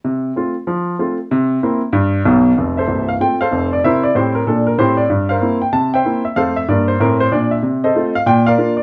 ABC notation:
X:1
M:4/4
L:1/8
Q:"Swing" 1/4=190
K:F
V:1 name="Grand piano"
z8 | z8 | z [Ace]2 f g [Acf]2 d | [Bce] d [EGc] B A B [EGc] d |
z [Bcf]2 g a [ceg]2 e | [Acf] e d c B c d e | [K:Bb] z [Ace]2 f g [Bdf]2 d |]
V:2 name="Grand piano"
C,2 [A,CF]2 F,2 [A,CF]2 | C,2 [B,CE]2 G,,2 [=B,,,=B,,]2 | [F,,,F,,]2 [C,,,C,,]2 [A,CF]2 [F,,,F,,]2 | [C,E]2 [A,,C]2 [B,,D]2 [A,,C]2 |
G,,2 [B,CE]2 C,2 [B,CE]2 | [F,,A,]2 [G,,B,]2 [A,,C]2 [B,,D]2 | [K:Bb] C,2 [A,CF]2 B,,2 [B,DF]2 |]